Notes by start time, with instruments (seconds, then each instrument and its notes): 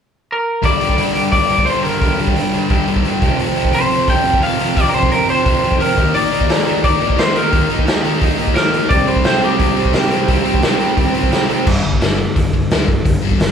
0.32 lead electric guitar A#4
0.62 distorted electric guitar G2 D3 G3, lead electric guitar D5, kick, open hi-hat
0.80 distorted electric guitar G2 D3 G3, open hi-hat
0.89 kick
0.96 distorted electric guitar G2 D3 G3, open hi-hat
1.15 distorted electric guitar G2 D3 G3, open hi-hat
1.32 distorted electric guitar G2 D3 G3, lead electric guitar D5, kick, open hi-hat
1.49 distorted electric guitar G2 D3 G3, open hi-hat
1.58 kick
1.65 distorted electric guitar G2 D3 G3, lead electric guitar C5, open hi-hat
1.83 distorted electric guitar G2 D3 G3, lead electric guitar A#4, open hi-hat
2.01 distorted electric guitar G2 D3 G3, kick, open hi-hat
2.19 distorted electric guitar G2 D3 G3, open hi-hat
2.27 kick
2.36 distorted electric guitar G2 D3 G3, open hi-hat
2.53 distorted electric guitar G2 D3 G3, open hi-hat
2.70 distorted electric guitar G2 D3 G3, kick, open hi-hat
2.87 distorted electric guitar G2 D3 G3, open hi-hat
2.96 kick
3.04 distorted electric guitar G2 D3 G3, open hi-hat
3.21 distorted electric guitar F2 C3 F3, kick, open hi-hat
3.38 distorted electric guitar F2 C3 F3, open hi-hat
3.56 distorted electric guitar F2 C3 F3, open hi-hat
3.65 kick
3.72 distorted electric guitar F2 C3 F3, lead electric guitar C5, open hi-hat
3.89 distorted electric guitar F2 C3 F3, open hi-hat
4.07 distorted electric guitar F2 C3 F3, lead electric guitar G5, kick, open hi-hat
4.23 distorted electric guitar F2 C3 F3, open hi-hat
4.34 kick
4.41 distorted electric guitar F2 C3 F3, lead electric guitar F5, open hi-hat
4.59 distorted electric guitar F2 C3 F3, open hi-hat
4.76 distorted electric guitar F2 C3 F3, lead electric guitar D5, kick, open hi-hat
4.89 distorted electric guitar F2, lead electric guitar A#4
4.94 distorted electric guitar C3 F3, lead electric guitar C5, open hi-hat
5.03 kick
5.09 distorted electric guitar F2 C3 F3, lead electric guitar A#4, open hi-hat
5.27 distorted electric guitar F2 C3 F3, lead electric guitar C5, open hi-hat
5.44 distorted electric guitar F2 C3 F3, kick, open hi-hat
5.62 distorted electric guitar F2 C3 F3, open hi-hat
5.72 kick
5.80 distorted electric guitar F2 C3 F3, lead electric guitar A#4, open hi-hat
5.96 distorted electric guitar D#3 A#3 D#4, kick, open hi-hat
6.14 distorted electric guitar D#3 A#3 D#4, lead electric guitar D5, open hi-hat
6.32 distorted electric guitar D#3 A#3 D#4, open hi-hat
6.41 kick
6.49 distorted electric guitar D#3 A#3 D#4, snare, open hi-hat
6.66 distorted electric guitar D#3 A#3 D#4, open hi-hat
6.83 distorted electric guitar D#3 A#3 D#4, lead electric guitar D5, kick, open hi-hat
6.99 distorted electric guitar D#3 A#3 D#4, open hi-hat
7.10 kick
7.17 distorted electric guitar D#3 A#3 D#4, lead electric guitar C5, snare, open hi-hat
7.33 distorted electric guitar D#3 A#3 D#4, lead electric guitar A#4, open hi-hat
7.50 distorted electric guitar D#3 A#3 D#4, kick, open hi-hat
7.69 distorted electric guitar D#3 A#3 D#4, open hi-hat
7.79 kick
7.86 distorted electric guitar D#3 A#3 D#4, snare, open hi-hat
8.04 distorted electric guitar D#3 A#3 D#4, open hi-hat
8.20 distorted electric guitar D#3 A#3 D#4, kick, open hi-hat
8.38 distorted electric guitar D#3 A#3 D#4, open hi-hat
8.48 kick
8.55 distorted electric guitar D#3 A#3 D#4, lead electric guitar A#4, snare, open hi-hat
8.73 distorted electric guitar D#3 A#3 D#4, open hi-hat
8.89 distorted electric guitar C3 G3 C4, lead electric guitar D5, kick, open hi-hat
9.07 distorted electric guitar C3 G3 C4, lead electric guitar C5, open hi-hat
9.16 kick
9.24 distorted electric guitar C3 G3 C4, lead electric guitar C5, snare, open hi-hat
9.42 distorted electric guitar C3 G3 C4, lead electric guitar G4, open hi-hat
9.59 distorted electric guitar C3 G3 C4, kick, open hi-hat
9.77 distorted electric guitar C3 G3 C4, open hi-hat
9.85 kick
9.93 distorted electric guitar C3 G3 C4, snare, open hi-hat
10.11 distorted electric guitar C3 G3 C4, open hi-hat
10.28 distorted electric guitar C3 G3 C4, kick, open hi-hat
10.45 distorted electric guitar C3 G3 C4, open hi-hat
10.54 kick
10.62 distorted electric guitar C3 G3 C4, snare, open hi-hat
10.80 distorted electric guitar C3 G3 C4, open hi-hat
10.96 distorted electric guitar C3 G3 C4, kick, open hi-hat
11.14 distorted electric guitar C3 G3 C4, open hi-hat
11.23 kick
11.31 distorted electric guitar C3 G3 C4, snare, open hi-hat
11.49 distorted electric guitar C3 G3 C4, open hi-hat
11.66 picked electric bass G1, distorted electric guitar G2 D3 G3, kick, crash
11.83 picked electric bass G1, distorted electric guitar G2 D3
11.93 kick
12.00 picked electric bass G1, distorted electric guitar G2 D3 G3, snare, open hi-hat
12.18 distorted electric guitar G2 D3
12.35 picked electric bass G1, distorted electric guitar G2 D3, kick, open hi-hat
12.53 picked electric bass G1, distorted electric guitar G2 D3, kick
12.71 picked electric bass D2, distorted electric guitar G2 D3 G3, snare, open hi-hat
12.88 picked electric bass G1, distorted electric guitar G2 D3, kick
13.05 picked electric bass G1, distorted electric guitar G2 D3, kick, open hi-hat
13.22 picked electric bass G1, distorted electric guitar G2 D3 G3
13.31 kick
13.40 picked electric bass G1, distorted electric guitar G2 D3, snare, open hi-hat